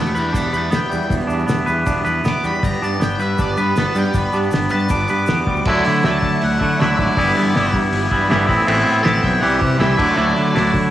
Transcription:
Already playing: E1 E2 E3 B3 D4 E4 G4 B4 E5
0.01 E5 A5
0.06 shaker
0.15 E2 B4 G5, shaker
0.19 B5
0.33 E1 D4 G5 B5, kick, open hi-hat, shaker
0.53 E2 B4 G5, shaker
0.58 B5
0.71 E1 B3, snare, open hi-hat, shaker
0.76 G5
0.90 E2 G3, shaker
1.02 shaker
1.10 E1 E2, kick, open hi-hat, shaker
1.21 shaker
1.27 E2 D4, shaker
1.39 shaker
1.46 E1 B3, snare, open hi-hat, shaker
1.66 E2 B4, shaker
1.86 E1 D4, kick, open hi-hat, shaker
2.05 E2 B4, shaker
2.24 E1 B3, snare, open hi-hat, shaker
2.28 D6
2.44 E2 G3 B5, shaker
2.54 shaker
2.63 G1 G3 B4 A#5, kick, open hi-hat, shaker
2.82 G2 D4 A5, shaker
2.93 shaker
3.00 G1 B3 G5, snare, open hi-hat, shaker
3.11 shaker
3.18 G2 B4 E5, shaker
3.38 G1 D4 D5, kick, open hi-hat, shaker
3.57 G2 B4, shaker
3.76 G1 B3 A4, snare, open hi-hat, shaker
3.95 G2 G3 G4, shaker
4.05 shaker
4.14 G1 G3 B4, kick, open hi-hat, shaker
4.33 G2 D4, shaker
4.43 shaker
4.51 G1 B3, snare, open hi-hat, shaker
4.62 shaker
4.70 G2 B4 A5, shaker
4.80 shaker
4.89 G1 D4 D6, kick, open hi-hat, shaker
5.00 shaker
5.08 G2 B4 D6, shaker
5.18 shaker
5.26 E2 B3, snare, open hi-hat, shaker
5.37 shaker
5.47 D2 G3, kick
5.56 shaker
5.65 D2 D3 F#3 A3 D4 E4 F#4 D5 E5 A5, kick, crash
5.85 D3 A3 D4 E4, open hi-hat
6.03 D2 F#3 A3 D4 E4 A5, snare, open hi-hat
6.08 A6
6.22 D3, kick, open hi-hat
6.42 D2 F#5 F#6, open hi-hat
6.59 D3 A3 D4 E4, kick, open hi-hat
6.79 D2 D3 F#3 A3 D4 E4 E5 E6, snare, open hi-hat
6.97 G#1 A3 D4 E4 D5 D6, kick, open hi-hat
7.14 G1 G2 D3 E3 G3 G4 E5 B5, kick, open hi-hat
7.19 B3 E4
7.28 snare
7.36 G2 E3 G3 B3 E4, open hi-hat
7.54 G1 E3 G3 B3 E4, snare, open hi-hat
7.73 G2, kick, open hi-hat
7.92 G1, open hi-hat
8.11 G2 E3 G3 B3 E4, kick, open hi-hat
8.28 G1 G2 D3 E3 G3 B3 E4, snare, open hi-hat
8.47 A1 A2 E3 B3 C4 E4 A4, kick, open hi-hat
8.67 A1 A2 E3 B3 C4 E4, crash
8.78 snare
8.86 A2 B3 C4 E4, open hi-hat
9.03 A1 E3 B3 C4 E4 A5 A6, snare, open hi-hat
9.23 B1 G5 G6, kick, open hi-hat
9.41 C2 C3 E3 G3 E4 G4 F#5 C6 F#6, open hi-hat
9.45 G4
9.59 C3 G3 E4 G4, kick, open hi-hat
9.78 C2 C3 E3 G3 E4 G4 E5 E6, snare, open hi-hat
9.97 D2 D3 F#3 A3 D4 E4 F#4 D5 A5 D6, kick, crash
10.02 D5
10.16 D2 D3 F#3 A3 D4 E4
10.28 snare
10.34 D3 A3 D4 E4, open hi-hat
10.54 D2 F#3 A3 D4 E4, snare, open hi-hat
10.74 D3, kick, open hi-hat

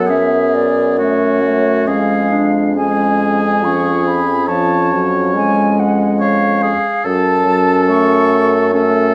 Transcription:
Already playing: F#2 F#3 B3 F#5
0.07 B3 C#4 G#4 E5
0.54 D5
0.98 A3 C#4 F#4 C#5
1.43 A3
1.86 F2 G#3 C#4 G#4 F5
2.31 D4
2.76 G#3 C#4 G#4 G#5
3.62 F3 C#4 C#6
4.06 B5
4.47 F3 C#4 C#5 A5
4.92 F#3
5.35 G#3 G#5
5.79 F#5
6.20 C#5 F5
6.62 G#4
7.04 F#2 F#3 C#4 A4 A5
7.46 F#3
7.89 A3 C#6
8.73 A3 C#4 A4

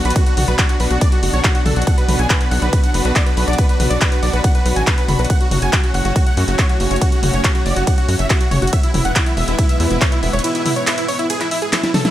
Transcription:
Already playing: B2 D3 F#3 D4 F#4
0.05 B1 B4, closed hi-hat
0.10 closed hi-hat
0.16 F#4, kick, closed hi-hat, ride
0.26 F#4, closed hi-hat
0.37 B1 F#4, open hi-hat, mid tom
0.48 B1 B4, closed hi-hat
0.59 F#4, kick, clap, closed hi-hat, ride
0.69 F#4, closed hi-hat
0.80 B1 B4, open hi-hat
0.91 B1 F#4, closed hi-hat
1.01 D5, kick, closed hi-hat, ride
1.12 F#4, closed hi-hat
1.23 F#1 F#4, open hi-hat
1.33 B1 C#5, closed hi-hat
1.44 F#4, kick, clap, closed hi-hat, ride
1.55 F#4, closed hi-hat
1.65 B1 A4, open hi-hat, mid tom
1.76 B1 F#4, closed hi-hat
1.82 closed hi-hat
1.87 F#5, kick, closed hi-hat, ride
1.98 B4, closed hi-hat
2.08 B1 B4, open hi-hat, mid tom
2.19 B1 G#5, closed hi-hat
2.30 B4, kick, clap, closed hi-hat, ride
2.41 B4, closed hi-hat
2.51 B1 F#5, open hi-hat
2.62 B1 B4, closed hi-hat
2.73 B4, kick, closed hi-hat, ride
2.84 F#5, closed hi-hat
2.94 F#1 B4, open hi-hat
3.05 B1 B4, closed hi-hat
3.15 D5, kick, clap, closed hi-hat, ride
3.26 B4, closed hi-hat
3.37 B1 B4, open hi-hat
3.48 B1 D5, closed hi-hat
3.53 closed hi-hat
3.58 B4, kick, closed hi-hat, ride
3.69 B4, closed hi-hat
3.80 B1 B4, open hi-hat, mid tom
3.90 B1 D5, closed hi-hat
4.01 B4, kick, clap, closed hi-hat, ride
4.12 B4, closed hi-hat
4.23 B1 D5, open hi-hat
4.33 B1 B4, closed hi-hat
4.44 F#5, kick, closed hi-hat, ride
4.55 B4, closed hi-hat
4.65 B1 B4, open hi-hat
4.76 A1 G#5, closed hi-hat
4.87 B4, kick, clap, closed hi-hat, ride
4.98 B4, closed hi-hat
5.08 F#1 B5, open hi-hat, mid tom
5.19 B1 B4, closed hi-hat
5.25 closed hi-hat
5.30 A2 C#3 C#4 F#5, kick, closed hi-hat, ride
5.41 F#4, closed hi-hat
5.51 F#1 F#4, open hi-hat, mid tom
5.62 F#1 G#5, closed hi-hat
5.73 F#4, kick, clap, closed hi-hat, ride
5.84 F#4, closed hi-hat
5.94 F#1 F#5, open hi-hat
6.05 F#1 F#4, closed hi-hat
6.16 F#4, kick, closed hi-hat, ride
6.26 F#5, closed hi-hat
6.37 F#2 F#4, open hi-hat
6.48 F#1 F#4, closed hi-hat
6.59 C#5, kick, clap, closed hi-hat, ride
6.69 F#4, closed hi-hat
6.80 F#1 F#4, open hi-hat
6.91 F#1 C#5, closed hi-hat
6.96 closed hi-hat
7.01 F#4, kick, closed hi-hat, ride
7.12 F#4, closed hi-hat
7.23 F#1 F#4, open hi-hat, mid tom
7.33 F#1 C#5, closed hi-hat
7.44 F#4, kick, clap, closed hi-hat, ride
7.55 F#4, closed hi-hat
7.66 F#1 D5, open hi-hat
7.76 F#1 F#4, closed hi-hat
7.87 F#5, kick, closed hi-hat, ride
7.98 F#4, closed hi-hat
8.08 F#2 F#4, open hi-hat
8.19 F#1 E5, closed hi-hat
8.30 F#4, kick, clap, closed hi-hat, ride
8.41 F#4, closed hi-hat
8.51 F#1 C#5, open hi-hat, mid tom
8.62 F#1 F#4, closed hi-hat
8.67 closed hi-hat
8.73 G#2 B2 E3 B3 E4 E5, kick, closed hi-hat, ride
8.83 E4, closed hi-hat
8.94 E1 E4, open hi-hat, mid tom
9.05 E1 F#5, closed hi-hat
9.16 E4, kick, clap, closed hi-hat, ride
9.26 E4, closed hi-hat
9.37 E1 E5, open hi-hat
9.48 E1 E4, closed hi-hat
9.59 E4, kick, closed hi-hat, ride
9.69 E5, closed hi-hat
9.80 E2 E4, open hi-hat
9.91 E1 E4, closed hi-hat
10.01 C#5, kick, clap, closed hi-hat, ride
10.12 E4, closed hi-hat
10.23 E1 E4, open hi-hat
10.33 E1 C#5, closed hi-hat
10.39 closed hi-hat
10.44 E4, closed hi-hat, ride
10.55 E4, closed hi-hat
10.66 E4, open hi-hat, mid tom
10.76 C#5, closed hi-hat
10.87 E4, clap, closed hi-hat, ride
10.98 E4, closed hi-hat
11.08 C#5, open hi-hat
11.19 E4, closed hi-hat
11.30 G#4, closed hi-hat, ride
11.41 E4, clap, closed hi-hat
11.51 E4, open hi-hat
11.62 G#4, closed hi-hat
11.73 E4, snare, clap, closed hi-hat, ride
11.84 E4, snare, closed hi-hat
11.94 A4, snare, open hi-hat, mid tom
12.05 E4, snare, closed hi-hat

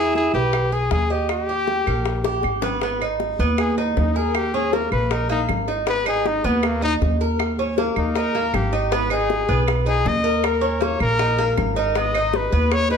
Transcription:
Already playing: E2 E4 G#4
0.15 G#4, high bongo
0.34 B1 G4 B4, high bongo
0.53 high bongo, claves
0.72 G#4, high bongo
0.91 D#2 G#4, high bongo, low bongo
1.10 G4 D#5, high bongo
1.29 G4, high bongo, claves
1.49 G4
1.68 high bongo
1.86 A#1 A#4, high bongo, claves
2.06 high bongo
2.24 G4, high bongo
2.43 G#1, high bongo, claves
2.62 B3, low bongo
2.81 B3, high bongo
3.00 D#4, high bongo, claves
3.20 high bongo
3.39 D#2 B3
3.58 G#4, high bongo, claves
3.78 B3 D#4, high bongo
3.97 D#2 D#4, high bongo, low bongo
4.16 G#4 A#4, high bongo
4.35 G4, high bongo, claves
4.54 C#4 G#4, high bongo
4.73 A#3 A#4, high bongo
4.92 A#1 B4, claves
5.11 D#4 A#4, high bongo
5.29 A#3 D#4, high bongo
5.49 G#1, high bongo, low bongo, claves
5.68 D#4, high bongo
5.87 B3 B4, high bongo
6.06 D#4 G#4, high bongo, claves
6.25 D#4, high bongo
6.44 D#2 B3
6.63 A#3, high bongo, claves
6.82 D#4, high bongo
7.01 D#2, high bongo, low bongo
7.21 A#4, high bongo
7.39 high bongo, claves
7.59 C#4, high bongo
7.78 A#3, high bongo
7.96 D#2 D#4, claves
8.15 D#4 A#4, high bongo
8.35 A#3, high bongo
8.54 G#1 G4, high bongo, low bongo, claves
8.73 D#4, high bongo
8.92 B3 B4, high bongo
9.10 D#4 G#4, high bongo, claves
9.30 high bongo
9.49 B1 B3
9.68 high bongo, claves
9.86 D#4 G#4, high bongo
10.05 D#2 D#5, high bongo, low bongo
10.24 A#4, high bongo
10.44 A#4, high bongo, claves
10.61 C#4, high bongo
10.80 A#3 C#5, high bongo
11.00 A#1 A#4, claves
11.19 D#4, high bongo
11.38 A#3, high bongo
11.57 G#1, high bongo, low bongo, claves
11.76 D#4 A#4, high bongo
11.95 B3 D#5, high bongo
12.15 D#4, high bongo, claves
12.34 B4, high bongo
12.52 D#2 B3
12.71 C#5, high bongo, claves
12.90 D#4 B4, high bongo

